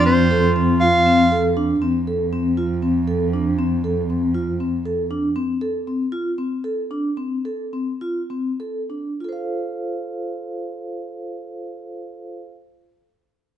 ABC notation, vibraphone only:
X:1
M:7/8
L:1/8
Q:1/4=116
K:F
V:1 name="Vibraphone"
C A C F C A D | C A C F C A D | C A C F C A D | C A C F C A D |
C A C F C A D | [FAcf]6- [FAcf]- | [FAcf]6- [FAcf] |]